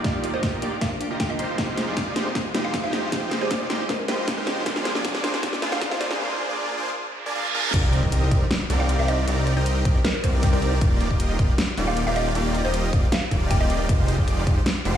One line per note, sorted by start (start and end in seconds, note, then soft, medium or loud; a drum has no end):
0.00 0.31 A#3 medium
0.00 0.31 D4 medium
0.00 riser medium
0.04 0.32 D#1 medium
0.04 0.31 A#3 medium
0.04 0.31 D#4 medium
0.04 0.31 F4 medium
0.04 0.31 G4 medium
0.04 0.32 G4 medium
0.04 0.31 D5 loud
0.04 kick medium
0.04 snare medium
0.04 closed hi-hat medium
0.24 closed hi-hat medium
0.33 0.60 D#1 loud
0.33 0.39 A#3 medium
0.33 0.60 A#3 medium
0.33 0.39 D4 medium
0.33 0.60 D#4 medium
0.33 0.60 F4 medium
0.33 0.39 F4 medium
0.33 0.60 G4 medium
0.33 0.40 A#4 medium
0.33 0.45 C5 medium
0.33 0.60 D#5 medium
0.43 kick medium
0.43 snare medium
0.43 closed hi-hat medium
0.61 0.73 D#1 loud
0.61 0.68 A#3 medium
0.61 0.75 A#3 medium
0.61 0.68 D4 medium
0.61 0.75 D#4 medium
0.61 0.75 F4 medium
0.61 0.68 F4 medium
0.61 0.75 G4 medium
0.61 0.69 G4 medium
0.61 0.75 D5 loud
0.61 closed hi-hat medium
0.80 0.98 A#3 medium
0.80 0.98 D4 medium
0.80 0.99 F4 medium
0.80 0.99 A#4 medium
0.80 0.94 F5 medium
0.80 kick medium
0.80 snare medium
0.80 closed hi-hat medium
0.99 1.06 A#3 medium
0.99 1.06 D4 medium
0.99 1.07 F4 medium
0.99 1.07 G4 loud
0.99 closed hi-hat medium
1.11 1.18 D#1 loud
1.11 1.18 A#3 medium
1.11 1.18 D#4 medium
1.11 1.18 F4 medium
1.11 1.18 G4 medium
1.11 1.18 D#5 loud
1.20 1.41 D#2 loud
1.20 1.33 A#3 medium
1.20 1.33 D#4 medium
1.20 1.33 F4 medium
1.20 1.33 G4 medium
1.20 1.33 F5 medium
1.20 1.28 G5 medium
1.20 kick medium
1.20 snare medium
1.20 closed hi-hat medium
1.29 1.35 A#3 medium
1.29 1.35 D4 medium
1.29 1.35 F4 medium
1.29 1.36 G4 loud
1.29 1.62 D#5 medium
1.39 1.56 D#1 medium
1.39 1.56 A#3 medium
1.39 1.56 D#4 medium
1.39 1.56 F4 medium
1.39 1.56 G4 medium
1.39 1.56 C5 loud
1.39 closed hi-hat medium
1.57 1.86 F1 medium
1.57 1.85 G#3 medium
1.57 1.85 C4 medium
1.57 1.85 D#4 medium
1.57 1.85 F4 medium
1.57 1.85 G4 medium
1.57 1.86 G4 medium
1.57 1.85 C5 loud
1.57 kick loud
1.57 snare medium
1.57 closed hi-hat medium
1.78 snare medium
1.78 closed hi-hat medium
1.86 2.14 F1 loud
1.86 1.93 G#3 medium
1.86 2.14 G#3 medium
1.86 1.93 C4 medium
1.86 2.14 D#4 medium
1.86 1.93 D#4 medium
1.86 2.14 F4 medium
1.86 2.14 G4 medium
1.86 1.94 G#4 medium
1.86 2.14 D5 loud
1.97 kick medium
1.97 snare medium
1.97 closed hi-hat medium
2.15 2.27 F1 medium
2.15 2.21 G#3 medium
2.15 2.29 G#3 medium
2.15 2.22 C4 medium
2.15 2.29 D#4 medium
2.15 2.22 D#4 medium
2.15 2.29 F4 medium
2.15 2.29 G4 medium
2.15 2.22 G4 medium
2.15 2.29 C5 loud
2.15 snare medium
2.15 closed hi-hat medium
2.34 2.52 G#3 medium
2.34 2.52 C4 medium
2.34 2.52 D#4 medium
2.34 2.53 G#4 medium
2.34 kick loud
2.34 snare medium
2.34 closed hi-hat medium
2.53 2.82 F1 loud
2.53 2.60 G#3 medium
2.53 2.81 G#3 medium
2.53 2.60 C4 medium
2.53 2.81 D#4 medium
2.53 2.61 D#4 medium
2.53 2.81 F4 medium
2.53 2.81 G4 medium
2.53 2.61 G4 loud
2.53 2.81 C5 loud
2.53 snare medium
2.53 closed hi-hat medium
2.64 2.82 F5 medium
2.74 kick medium
2.74 snare medium
2.74 closed hi-hat medium
2.83 3.10 F1 loud
2.83 2.89 G#3 loud
2.83 3.10 G#3 medium
2.83 2.89 C4 medium
2.83 3.10 D#4 medium
2.83 2.89 D#4 medium
2.83 3.10 F4 medium
2.83 3.10 G4 medium
2.83 2.90 G4 loud
2.83 3.10 C5 loud
2.83 2.91 F5 medium
2.93 3.05 D#5 medium
2.93 snare medium
2.93 closed hi-hat medium
3.11 3.39 F1 loud
3.11 3.39 G#3 medium
3.11 3.39 C4 medium
3.11 3.39 D#4 medium
3.11 3.39 F4 medium
3.11 3.39 G4 medium
3.11 3.39 C5 loud
3.11 kick loud
3.11 snare medium
3.11 closed hi-hat medium
3.31 snare medium
3.31 closed hi-hat medium
3.40 3.68 F1 loud
3.40 3.46 G#3 medium
3.40 3.68 G#3 medium
3.40 3.47 C4 medium
3.40 3.68 D#4 medium
3.40 3.47 D#4 medium
3.40 3.68 F4 medium
3.40 3.68 G4 medium
3.40 3.47 G#4 medium
3.40 3.53 C5 medium
3.40 3.68 D5 medium
3.51 kick loud
3.51 snare medium
3.51 closed hi-hat medium
3.69 3.81 F1 loud
3.69 3.75 G#3 medium
3.69 3.83 G#3 medium
3.69 3.76 C4 medium
3.69 3.83 D#4 medium
3.69 3.76 D#4 medium
3.69 3.83 F4 medium
3.69 3.83 G4 medium
3.69 3.76 G4 medium
3.69 3.83 C5 loud
3.69 snare medium
3.69 closed hi-hat medium
3.88 4.06 G#3 medium
3.88 4.06 C4 medium
3.88 4.06 D#4 medium
3.88 4.07 G#4 medium
3.88 3.96 A#4 medium
3.88 kick loud
3.88 snare medium
3.88 closed hi-hat medium
3.99 4.05 A#4 medium
4.07 4.36 F1 loud
4.07 4.14 G#3 loud
4.07 4.35 G#3 loud
4.07 4.14 C4 medium
4.07 4.35 D#4 medium
4.07 4.14 D#4 medium
4.07 4.35 F4 medium
4.07 4.35 G4 medium
4.07 4.15 G4 loud
4.07 4.21 C5 medium
4.07 4.35 C5 loud
4.07 snare medium
4.07 closed hi-hat medium
4.28 kick loud
4.28 snare medium
4.28 closed hi-hat medium
4.37 4.64 F1 loud
4.37 4.43 G#3 loud
4.37 4.64 G#3 medium
4.37 4.43 C4 medium
4.37 4.64 D#4 medium
4.37 4.43 D#4 medium
4.37 4.64 F4 medium
4.37 4.64 G4 medium
4.37 4.44 G4 loud
4.37 4.70 A#4 medium
4.37 4.64 C5 loud
4.47 snare medium
4.47 closed hi-hat medium
4.65 4.93 A#1 loud
4.65 4.92 G#3 medium
4.65 4.93 A#3 medium
4.65 4.93 C4 medium
4.65 4.93 D4 medium
4.65 4.93 F4 medium
4.65 4.93 G#4 medium
4.65 4.93 C5 loud
4.65 kick loud
4.65 snare medium
4.65 closed hi-hat medium
4.76 snare medium
4.85 snare medium
4.85 closed hi-hat medium
4.94 5.22 A#1 loud
4.94 5.00 G#3 medium
4.94 5.21 A#3 medium
4.94 5.01 C4 medium
4.94 5.21 D4 medium
4.94 5.01 D4 medium
4.94 5.21 F4 medium
4.94 5.01 G4 medium
4.94 5.21 G#4 medium
4.94 5.21 D5 loud
4.94 snare medium
5.05 kick loud
5.05 snare medium
5.05 closed hi-hat medium
5.15 snare medium
5.23 5.35 A#1 loud
5.23 5.29 G#3 medium
5.23 5.36 A#3 medium
5.23 5.30 C4 medium
5.23 5.36 D4 medium
5.23 5.30 D4 medium
5.23 5.36 F4 medium
5.23 5.30 F4 medium
5.23 5.36 G#4 medium
5.23 5.36 C5 loud
5.23 snare medium
5.23 closed hi-hat medium
5.34 snare medium
5.42 5.60 G#3 medium
5.42 5.60 C4 medium
5.42 5.60 D4 medium
5.42 5.61 G4 medium
5.42 kick loud
5.42 snare medium
5.42 closed hi-hat medium
5.53 snare medium
5.61 5.89 A#1 loud
5.61 5.68 G#3 loud
5.61 5.89 A#3 loud
5.61 5.68 C4 medium
5.61 5.89 D4 medium
5.61 5.68 D4 medium
5.61 5.89 F4 medium
5.61 5.69 F4 loud
5.61 5.89 G#4 medium
5.61 5.89 C5 loud
5.61 snare loud
5.61 closed hi-hat medium
5.72 5.89 F5 medium
5.72 snare medium
5.81 kick loud
5.81 snare loud
5.81 closed hi-hat medium
5.90 6.18 A#1 loud
5.90 5.96 G#3 loud
5.90 6.18 A#3 medium
5.90 5.97 C4 medium
5.90 6.18 D4 medium
5.90 5.97 D4 medium
5.90 6.18 F4 medium
5.90 5.97 F4 loud
5.90 6.18 G#4 medium
5.90 6.18 C5 loud
5.90 5.99 F5 medium
5.90 snare medium
6.01 6.13 D5 medium
6.01 snare loud
6.01 closed hi-hat medium
6.11 snare medium
6.20 6.47 A#3 loud
6.20 6.47 D4 medium
6.20 6.47 F4 medium
6.20 6.47 G#4 medium
6.20 6.47 C5 loud
6.49 6.75 A#3 medium
6.49 6.75 D4 medium
6.49 6.75 F4 medium
6.49 6.75 G#4 medium
6.49 6.75 D5 loud
6.77 6.90 A#3 medium
6.77 6.90 D4 medium
6.77 6.90 F4 medium
6.77 6.90 G#4 medium
6.77 6.90 C5 loud
6.97 reverse cymbal medium
7.26 7.33 A#3 medium
7.26 7.33 D4 medium
7.26 7.33 F4 medium
7.26 7.33 G#4 medium
7.26 7.33 D5 loud
7.35 7.48 A#3 medium
7.35 7.48 D4 medium
7.35 7.48 F4 medium
7.35 7.48 G#4 medium
7.35 7.48 F5 medium
7.54 7.72 A#3 loud
7.54 7.71 D4 medium
7.54 7.71 F4 medium
7.54 7.71 G#4 medium
7.54 7.71 A#4 loud
7.74 8.01 C2 loud
7.74 8.01 C4 medium
7.74 8.01 D#4 medium
7.74 8.01 G4 medium
7.74 8.01 A#4 medium
7.74 8.01 D5 loud
7.74 kick loud
7.74 closed hi-hat medium
7.74 crash loud
7.74 impact medium
7.93 closed hi-hat medium
8.03 8.30 C2 loud
8.03 8.29 C4 medium
8.03 8.29 D#4 medium
8.03 8.29 G4 medium
8.03 8.29 A#4 medium
8.03 8.29 D#5 medium
8.03 kick medium
8.12 closed hi-hat medium
8.31 8.42 C2 loud
8.31 8.44 C4 medium
8.31 8.44 D#4 medium
8.31 8.44 G4 medium
8.31 8.44 A#4 medium
8.31 8.44 D5 loud
8.31 kick loud
8.31 closed hi-hat medium
8.51 snare loud
8.51 closed hi-hat medium
8.70 8.97 C2 loud
8.70 8.97 C4 loud
8.70 8.97 D#4 medium
8.70 8.97 G4 medium
8.70 8.97 A#4 medium
8.70 8.97 D5 loud
8.70 closed hi-hat medium
8.80 8.97 F5 medium
8.89 closed hi-hat medium
8.99 9.26 C2 loud
8.99 9.25 C4 medium
8.99 9.25 D#4 medium
8.99 9.25 G4 medium
8.99 9.25 A#4 medium
8.99 9.25 D5 loud
8.99 9.06 F5 medium
9.08 9.21 D#5 medium
9.08 closed hi-hat medium
9.27 9.55 C2 medium
9.27 9.54 C4 medium
9.27 9.54 D#4 medium
9.27 9.54 G4 medium
9.27 9.54 A#4 medium
9.27 9.54 D5 loud
9.27 closed hi-hat medium
9.47 closed hi-hat medium
9.57 9.83 C2 loud
9.57 9.83 C4 medium
9.57 9.83 D#4 medium
9.57 9.83 G4 medium
9.57 9.83 A#4 medium
9.57 9.69 C5 medium
9.57 9.83 D#5 loud
9.66 closed hi-hat medium
9.85 9.96 C2 medium
9.85 9.98 C4 medium
9.85 9.98 D#4 medium
9.85 9.98 G4 medium
9.85 9.98 A#4 medium
9.85 9.98 D5 loud
9.85 kick loud
9.85 closed hi-hat medium
10.05 10.11 A#4 medium
10.05 snare loud
10.05 closed hi-hat medium
10.15 10.20 A#4 medium
10.24 10.51 C2 loud
10.24 10.51 C4 loud
10.24 10.51 D#4 medium
10.24 10.51 G4 medium
10.24 10.51 A#4 medium
10.24 10.36 C5 medium
10.24 10.51 D5 loud
10.24 kick medium
10.24 closed hi-hat medium
10.43 kick loud
10.43 closed hi-hat medium
10.53 10.80 C2 loud
10.53 10.79 C4 medium
10.53 10.79 D#4 medium
10.53 10.79 G4 medium
10.53 10.85 A#4 medium
10.53 10.79 A#4 medium
10.53 10.79 D5 loud
10.62 closed hi-hat medium
10.81 11.09 D#1 loud
10.81 11.08 A#3 medium
10.81 11.08 D#4 medium
10.81 11.08 F4 medium
10.81 11.08 G4 medium
10.81 11.08 D5 loud
10.81 kick loud
10.81 closed hi-hat medium
11.01 closed hi-hat medium
11.11 11.37 D#1 loud
11.11 11.37 A#3 medium
11.11 11.37 D#4 medium
11.11 11.37 F4 medium
11.11 11.37 G4 medium
11.11 11.37 D#5 loud
11.11 kick medium
11.20 closed hi-hat medium
11.39 11.50 D#1 loud
11.39 11.52 A#3 medium
11.39 11.52 D#4 medium
11.39 11.52 F4 medium
11.39 11.52 G4 medium
11.39 11.52 D5 loud
11.39 kick loud
11.39 closed hi-hat medium
11.58 snare loud
11.58 closed hi-hat medium
11.78 12.05 D#1 loud
11.78 12.04 A#3 loud
11.78 12.04 D#4 medium
11.78 12.04 F4 medium
11.78 12.04 G4 medium
11.78 12.04 D5 loud
11.78 closed hi-hat medium
11.87 12.05 F5 medium
11.97 closed hi-hat medium
12.07 12.33 D#1 loud
12.07 12.33 A#3 loud
12.07 12.33 D#4 medium
12.07 12.33 F4 medium
12.07 12.33 G4 medium
12.07 12.33 D5 loud
12.07 12.14 F5 medium
12.16 12.28 D#5 medium
12.16 closed hi-hat medium
12.35 12.63 D#1 loud
12.35 12.62 A#3 loud
12.35 12.62 D#4 medium
12.35 12.62 F4 medium
12.35 12.62 G4 medium
12.35 12.62 D5 loud
12.35 closed hi-hat medium
12.55 closed hi-hat medium
12.64 12.91 D#1 loud
12.64 12.91 A#3 medium
12.64 12.91 D#4 medium
12.64 12.91 F4 medium
12.64 12.91 G4 medium
12.64 12.76 C5 medium
12.64 12.91 D#5 loud
12.74 closed hi-hat medium
12.93 13.04 D#1 loud
12.93 13.06 A#3 medium
12.93 13.06 D#4 medium
12.93 13.06 F4 medium
12.93 13.06 G4 medium
12.93 13.06 D5 loud
12.93 kick loud
12.93 closed hi-hat medium
13.12 13.24 F5 medium
13.12 snare loud
13.12 closed hi-hat medium
13.31 13.59 D#1 loud
13.31 13.58 A#3 medium
13.31 13.58 D#4 medium
13.31 13.58 F4 medium
13.31 13.58 G4 medium
13.31 13.58 D5 loud
13.31 kick medium
13.31 closed hi-hat medium
13.51 13.59 G5 medium
13.51 kick loud
13.51 closed hi-hat medium
13.61 13.91 D#1 loud
13.61 13.87 A#3 medium
13.61 13.87 D#4 medium
13.61 13.87 F4 medium
13.61 13.87 G4 medium
13.61 13.87 D5 loud
13.61 13.93 D#5 medium
13.70 closed hi-hat medium
13.89 14.16 F1 medium
13.89 14.16 G#3 medium
13.89 14.16 D#4 medium
13.89 14.16 F4 medium
13.89 14.16 G4 medium
13.89 14.16 C5 loud
13.89 kick loud
13.89 closed hi-hat medium
14.08 closed hi-hat medium
14.18 14.45 F1 loud
14.18 14.45 G#3 medium
14.18 14.45 D#4 medium
14.18 14.45 F4 medium
14.18 14.45 G4 medium
14.18 14.45 D5 loud
14.18 kick medium
14.28 closed hi-hat medium
14.47 14.58 F1 loud
14.47 14.60 G#3 medium
14.47 14.60 D#4 medium
14.47 14.60 F4 medium
14.47 14.60 G4 medium
14.47 14.60 C5 loud
14.47 kick loud
14.47 closed hi-hat medium
14.66 snare loud
14.66 closed hi-hat medium
14.85 14.97 F1 loud
14.85 14.97 G#3 loud
14.85 14.97 D#4 medium
14.85 14.97 F4 medium
14.85 14.97 G4 medium
14.85 14.97 C5 loud
14.85 closed hi-hat medium